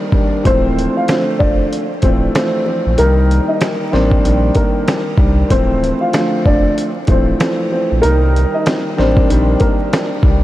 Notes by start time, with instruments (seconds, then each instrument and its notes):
0.12 grand piano D#3 G3 A#3 D4, kick
0.43 sub bass D1, grand piano E3 F3 A3 C4, upright piano C4 C5, kick, closed hi-hat
0.79 closed hi-hat
0.97 upright piano F4 F5
1.07 grand piano D3 F3 A3 C4, snare, closed hi-hat
1.39 sub bass F1, upright piano D4 D5, kick
1.73 closed hi-hat
2.02 sub bass D1, grand piano E3 F3 A3 C4, upright piano C4 C5, kick, closed hi-hat
2.33 grand piano E3 F3 A3 C4, snare, closed hi-hat
2.65 grand piano E3 F3 A3 C4
2.86 sub bass A#1
2.97 sub bass C2, grand piano D#3 G3 A#3 D#4, upright piano A#3 A#4, closed hi-hat
3.31 closed hi-hat
3.48 upright piano D#4 D#5
3.61 snare, closed hi-hat
3.91 sub bass A1, grand piano D#3 G3 A#3 D4, upright piano C4 C5, snare
4.11 kick
4.24 sub bass A#1, grand piano D#3 G3 A#3 D4, closed hi-hat
4.55 upright piano A#3 A#4, kick, closed hi-hat
4.88 snare, closed hi-hat
5.17 sub bass C2, grand piano D#3 G3 A#3 D4, kick
5.49 sub bass D1, grand piano E3 F3 A3 C4, upright piano C4 C5, kick, closed hi-hat
5.84 closed hi-hat
6.01 upright piano F4 F5
6.13 grand piano D3 F3 A3 C4, snare, closed hi-hat
6.46 sub bass F1, upright piano D4 D5, kick
6.78 closed hi-hat
7.07 sub bass D1, grand piano E3 F3 A3 C4, kick, closed hi-hat
7.11 upright piano C4 C5
7.39 grand piano E3 F3 A3 C4, snare, closed hi-hat
7.70 grand piano E3 F3 A3 C4
7.92 sub bass A#1
8.02 sub bass C2, grand piano D#3 G3 A#3 D#4, upright piano A#3 A#4, closed hi-hat
8.36 closed hi-hat
8.54 upright piano D#4 D#5
8.66 snare, closed hi-hat
8.97 sub bass A1, grand piano D#3 G3 A#3 D4, upright piano C4 C5, snare
9.17 kick
9.29 sub bass A#1, grand piano D#3 G3 A#3 D4, closed hi-hat
9.60 upright piano A#3 A#4, kick, closed hi-hat
9.93 snare, closed hi-hat
10.23 sub bass C2, grand piano D#3 G3 A#3 D4, kick